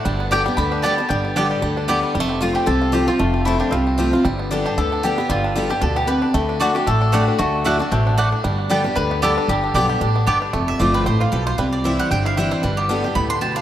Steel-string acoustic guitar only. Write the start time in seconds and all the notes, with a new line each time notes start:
0.05 G2
0.31 D3 G3 B3 G4
0.46 B3 G4
0.58 D3
0.84 D3 G3 B3 G4
0.98 B3 G4
1.11 G2
1.36 D3 G3 B3 G4
1.62 D3
1.88 D3 G3 B3 G4
2.15 F2
2.41 F3 A3 C4 F4
2.67 C3
2.92 F3 A3 C4 F4
3.07 C4 F4
3.19 F2
3.45 F3 A3 C4 F4
3.72 C3
3.98 F3 A3 C4 F4
4.13 C4 F4
4.25 G2
4.51 D3 G3 B3 G4
4.78 D3
5.03 D3 G3 B3 G4
5.18 B3 G4
5.30 G2
5.55 D3 G3 B3 G4
5.70 B3 G4
5.82 B2
6.08 C3
6.34 D3
6.60 D3 A3 D4 F#4
6.75 D4 F#4
6.87 A2
7.13 D3 A3 D4 F#4
7.39 D3
7.64 D3 A3 D4 F#4
7.79 D4 F#4
7.92 B2
8.18 A2
8.44 G2
8.69 D3 G3 B3 G4
8.84 B3 G4
8.96 D3
9.22 D3 G3 B3 G4
9.49 G2
9.74 D3 G3 B3 G4
10.01 A2
10.27 G2
10.53 F2
10.79 F3 A3 C4 F4
11.07 A2
11.32 B2
11.58 C3
11.84 E3 G3 C4 E4
12.12 G2
12.38 E3 G3 C4 E4
12.64 G2
12.89 D3 G3 B3 G4
13.04 B3 G4
13.15 A2
13.42 B2